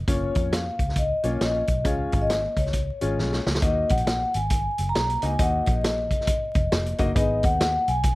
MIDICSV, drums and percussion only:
0, 0, Header, 1, 2, 480
1, 0, Start_track
1, 0, Tempo, 442478
1, 87, Time_signature, 4, 2, 24, 8
1, 8841, End_track
2, 0, Start_track
2, 0, Title_t, "Drums"
2, 83, Note_on_c, 9, 36, 100
2, 84, Note_on_c, 9, 42, 90
2, 192, Note_off_c, 9, 36, 0
2, 192, Note_off_c, 9, 42, 0
2, 379, Note_on_c, 9, 42, 71
2, 389, Note_on_c, 9, 36, 97
2, 488, Note_off_c, 9, 42, 0
2, 498, Note_off_c, 9, 36, 0
2, 570, Note_on_c, 9, 42, 90
2, 571, Note_on_c, 9, 38, 109
2, 678, Note_off_c, 9, 42, 0
2, 679, Note_off_c, 9, 38, 0
2, 860, Note_on_c, 9, 36, 78
2, 862, Note_on_c, 9, 42, 64
2, 965, Note_on_c, 9, 38, 27
2, 968, Note_off_c, 9, 36, 0
2, 971, Note_off_c, 9, 42, 0
2, 1037, Note_on_c, 9, 42, 98
2, 1042, Note_on_c, 9, 36, 88
2, 1074, Note_off_c, 9, 38, 0
2, 1146, Note_off_c, 9, 42, 0
2, 1151, Note_off_c, 9, 36, 0
2, 1340, Note_on_c, 9, 42, 62
2, 1448, Note_off_c, 9, 42, 0
2, 1528, Note_on_c, 9, 42, 80
2, 1530, Note_on_c, 9, 38, 106
2, 1636, Note_off_c, 9, 42, 0
2, 1639, Note_off_c, 9, 38, 0
2, 1815, Note_on_c, 9, 42, 66
2, 1826, Note_on_c, 9, 36, 85
2, 1924, Note_off_c, 9, 42, 0
2, 1934, Note_off_c, 9, 36, 0
2, 2005, Note_on_c, 9, 42, 87
2, 2006, Note_on_c, 9, 36, 101
2, 2113, Note_off_c, 9, 42, 0
2, 2114, Note_off_c, 9, 36, 0
2, 2302, Note_on_c, 9, 42, 74
2, 2312, Note_on_c, 9, 36, 97
2, 2410, Note_off_c, 9, 42, 0
2, 2421, Note_off_c, 9, 36, 0
2, 2492, Note_on_c, 9, 42, 95
2, 2493, Note_on_c, 9, 38, 114
2, 2600, Note_off_c, 9, 42, 0
2, 2602, Note_off_c, 9, 38, 0
2, 2784, Note_on_c, 9, 36, 84
2, 2786, Note_on_c, 9, 42, 73
2, 2888, Note_on_c, 9, 38, 29
2, 2893, Note_off_c, 9, 36, 0
2, 2894, Note_off_c, 9, 42, 0
2, 2961, Note_on_c, 9, 42, 89
2, 2968, Note_on_c, 9, 36, 88
2, 2997, Note_off_c, 9, 38, 0
2, 3070, Note_off_c, 9, 42, 0
2, 3076, Note_off_c, 9, 36, 0
2, 3266, Note_on_c, 9, 42, 69
2, 3375, Note_off_c, 9, 42, 0
2, 3462, Note_on_c, 9, 38, 52
2, 3570, Note_off_c, 9, 38, 0
2, 3609, Note_on_c, 9, 38, 59
2, 3717, Note_off_c, 9, 38, 0
2, 3759, Note_on_c, 9, 38, 85
2, 3850, Note_off_c, 9, 38, 0
2, 3850, Note_on_c, 9, 38, 83
2, 3926, Note_on_c, 9, 42, 91
2, 3929, Note_on_c, 9, 36, 105
2, 3958, Note_off_c, 9, 38, 0
2, 4035, Note_off_c, 9, 42, 0
2, 4038, Note_off_c, 9, 36, 0
2, 4223, Note_on_c, 9, 42, 76
2, 4236, Note_on_c, 9, 36, 95
2, 4311, Note_off_c, 9, 42, 0
2, 4311, Note_on_c, 9, 42, 60
2, 4344, Note_off_c, 9, 36, 0
2, 4415, Note_off_c, 9, 42, 0
2, 4415, Note_on_c, 9, 42, 94
2, 4416, Note_on_c, 9, 38, 120
2, 4523, Note_off_c, 9, 42, 0
2, 4524, Note_off_c, 9, 38, 0
2, 4709, Note_on_c, 9, 42, 80
2, 4817, Note_off_c, 9, 42, 0
2, 4882, Note_on_c, 9, 42, 95
2, 4889, Note_on_c, 9, 36, 94
2, 4990, Note_off_c, 9, 42, 0
2, 4997, Note_off_c, 9, 36, 0
2, 5186, Note_on_c, 9, 42, 67
2, 5295, Note_off_c, 9, 42, 0
2, 5372, Note_on_c, 9, 42, 81
2, 5374, Note_on_c, 9, 38, 115
2, 5480, Note_off_c, 9, 42, 0
2, 5483, Note_off_c, 9, 38, 0
2, 5528, Note_on_c, 9, 42, 60
2, 5636, Note_off_c, 9, 42, 0
2, 5661, Note_on_c, 9, 42, 83
2, 5770, Note_off_c, 9, 42, 0
2, 5845, Note_on_c, 9, 42, 96
2, 5849, Note_on_c, 9, 36, 109
2, 5953, Note_off_c, 9, 42, 0
2, 5957, Note_off_c, 9, 36, 0
2, 6141, Note_on_c, 9, 42, 74
2, 6155, Note_on_c, 9, 36, 99
2, 6250, Note_off_c, 9, 42, 0
2, 6263, Note_off_c, 9, 36, 0
2, 6338, Note_on_c, 9, 42, 99
2, 6339, Note_on_c, 9, 38, 106
2, 6446, Note_off_c, 9, 42, 0
2, 6447, Note_off_c, 9, 38, 0
2, 6625, Note_on_c, 9, 36, 75
2, 6628, Note_on_c, 9, 42, 75
2, 6733, Note_off_c, 9, 36, 0
2, 6733, Note_on_c, 9, 38, 27
2, 6737, Note_off_c, 9, 42, 0
2, 6803, Note_on_c, 9, 42, 109
2, 6807, Note_on_c, 9, 36, 99
2, 6842, Note_off_c, 9, 38, 0
2, 6911, Note_off_c, 9, 42, 0
2, 6916, Note_off_c, 9, 36, 0
2, 7104, Note_on_c, 9, 42, 71
2, 7109, Note_on_c, 9, 36, 102
2, 7213, Note_off_c, 9, 42, 0
2, 7217, Note_off_c, 9, 36, 0
2, 7288, Note_on_c, 9, 42, 89
2, 7291, Note_on_c, 9, 38, 114
2, 7397, Note_off_c, 9, 42, 0
2, 7399, Note_off_c, 9, 38, 0
2, 7444, Note_on_c, 9, 42, 57
2, 7553, Note_off_c, 9, 42, 0
2, 7575, Note_on_c, 9, 42, 74
2, 7586, Note_on_c, 9, 36, 86
2, 7684, Note_off_c, 9, 42, 0
2, 7695, Note_off_c, 9, 36, 0
2, 7764, Note_on_c, 9, 42, 87
2, 7766, Note_on_c, 9, 36, 109
2, 7872, Note_off_c, 9, 42, 0
2, 7874, Note_off_c, 9, 36, 0
2, 8058, Note_on_c, 9, 42, 77
2, 8071, Note_on_c, 9, 36, 98
2, 8167, Note_off_c, 9, 42, 0
2, 8179, Note_off_c, 9, 36, 0
2, 8250, Note_on_c, 9, 42, 97
2, 8251, Note_on_c, 9, 38, 113
2, 8358, Note_off_c, 9, 42, 0
2, 8359, Note_off_c, 9, 38, 0
2, 8544, Note_on_c, 9, 42, 75
2, 8653, Note_off_c, 9, 42, 0
2, 8716, Note_on_c, 9, 42, 102
2, 8722, Note_on_c, 9, 36, 94
2, 8824, Note_off_c, 9, 42, 0
2, 8831, Note_off_c, 9, 36, 0
2, 8841, End_track
0, 0, End_of_file